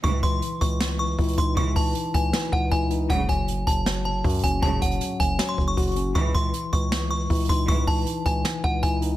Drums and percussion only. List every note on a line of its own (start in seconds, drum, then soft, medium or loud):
0.04 kick loud
0.04 closed hi-hat medium
0.23 kick medium
0.23 closed hi-hat medium
0.42 closed hi-hat medium
0.61 kick loud
0.61 closed hi-hat medium
0.80 snare loud
1.19 kick loud
1.19 closed hi-hat medium
1.23 closed hi-hat medium
1.28 closed hi-hat medium
1.33 closed hi-hat medium
1.37 kick loud
1.37 closed hi-hat medium
1.57 kick loud
1.57 closed hi-hat medium
1.76 kick loud
1.76 open hi-hat medium
1.95 closed hi-hat medium
2.14 kick loud
2.14 closed hi-hat medium
2.33 snare loud
2.52 kick loud
2.71 kick loud
2.71 closed hi-hat medium
2.90 closed hi-hat medium
3.10 kick loud
3.10 closed hi-hat medium
3.29 kick loud
3.29 closed hi-hat medium
3.48 closed hi-hat medium
3.67 kick medium
3.67 closed hi-hat medium
3.86 snare loud
4.24 kick loud
4.24 closed hi-hat medium
4.29 closed hi-hat medium
4.34 closed hi-hat medium
4.39 closed hi-hat medium
4.43 kick loud
4.43 closed hi-hat medium
4.63 kick loud
4.63 closed hi-hat medium
4.82 kick medium
4.82 closed hi-hat medium
4.82 open hi-hat medium
4.91 closed hi-hat medium
5.01 closed hi-hat medium
5.20 kick loud
5.20 closed hi-hat medium
5.39 snare loud
5.58 kick loud
5.77 kick medium
5.77 closed hi-hat medium
5.82 closed hi-hat medium
5.87 closed hi-hat soft
5.92 closed hi-hat soft
5.96 closed hi-hat medium
6.15 kick loud
6.15 closed hi-hat medium
6.34 kick medium
6.34 closed hi-hat medium
6.54 closed hi-hat medium
6.73 kick loud
6.73 closed hi-hat medium
6.92 snare loud
7.30 kick loud
7.30 closed hi-hat medium
7.35 closed hi-hat medium
7.40 closed hi-hat medium
7.44 closed hi-hat medium
7.49 kick loud
7.49 closed hi-hat medium
7.68 kick loud
7.68 closed hi-hat medium
7.87 kick medium
7.87 open hi-hat medium
8.06 closed hi-hat medium
8.26 kick loud
8.26 closed hi-hat medium
8.45 snare loud
8.64 kick loud
8.83 kick loud
8.83 closed hi-hat medium
9.02 closed hi-hat medium